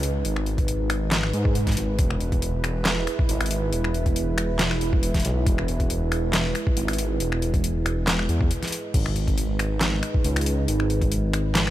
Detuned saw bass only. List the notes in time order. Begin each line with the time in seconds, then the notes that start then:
Already playing: C#2
0.25 G#1
1.33 G#2
1.77 G#1
1.99 E1
3.29 G#1
3.73 E1
4.81 E1
5.25 B1
5.46 E1
6.77 G#1
7.20 E1
8.29 E2
8.94 G#1
10.25 C#2
10.68 G#1